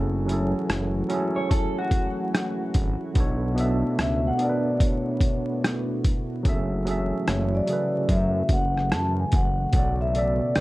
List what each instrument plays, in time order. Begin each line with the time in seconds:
Already playing: analog synth bass F#1, ambient pad E3 F#3 A3 E4 F#4, tine electric piano F#3 C#4 E4 G#4 A4
0.26 tine electric piano F#3 C#4 E4, closed hi-hat
0.31 tine electric piano G#4 A4
0.69 analog synth bass F#1, cross-stick, closed hi-hat
1.09 tine electric piano F#3 C#4 E4, closed hi-hat
1.13 tine electric piano G#4 A4
1.36 clean electric guitar C#5
1.51 clean electric guitar A4, kick, closed hi-hat
1.78 clean electric guitar F#4
1.91 kick, closed hi-hat
2.35 cross-stick, closed hi-hat
2.74 analog synth bass G#1, kick, closed hi-hat
3.14 analog synth bass B1, tine electric piano B2 B3 D4, ambient pad B3 D4 F#4, kick, closed hi-hat
3.19 tine electric piano A4 C#5
3.54 tine electric piano B2 B3 D4, closed hi-hat
3.59 tine electric piano A4 E5
3.98 analog synth bass C#2, vibraphone E5, cross-stick, closed hi-hat
4.27 vibraphone F#5
4.37 tine electric piano B2 B3 D4, closed hi-hat
4.42 tine electric piano A4 A#4, vibraphone D5
4.49 tine electric piano B4
4.80 kick, closed hi-hat
4.85 vibraphone C#5
5.21 kick, closed hi-hat
5.64 cross-stick, closed hi-hat
6.04 kick, closed hi-hat
6.43 analog synth bass F#1, ambient pad C#3 E3 F#3, tine electric piano F#3 C#4 G#4, kick, closed hi-hat
6.47 tine electric piano A4 E5
6.85 tine electric piano F#3 C#4 G#4, closed hi-hat
6.89 tine electric piano A4 E5
7.27 analog synth bass F#1, vibraphone C#5, cross-stick, closed hi-hat
7.55 vibraphone D5
7.67 tine electric piano C#3 F#3 G#4, closed hi-hat
7.71 tine electric piano A4 B4
8.09 analog synth bass F#2, vibraphone E5, kick, closed hi-hat
8.49 analog synth bass F#1, vibraphone F#5, kick, closed hi-hat
8.77 cross-stick
8.91 analog synth bass F#2, vibraphone A5, cross-stick, closed hi-hat
9.20 vibraphone G#5
9.32 analog synth bass F#1, vibraphone F#5, kick, closed hi-hat
9.71 analog synth bass B1, tine electric piano B2 B3 A4, ambient pad B2 B3, vibraphone F#5, kick, closed hi-hat
9.77 tine electric piano C#5 D5
10.01 vibraphone E5
10.12 tine electric piano B2 B3 A4, vibraphone D5, closed hi-hat
10.17 tine electric piano D5 E5
10.55 analog synth bass C#2, vibraphone B4, cross-stick, closed hi-hat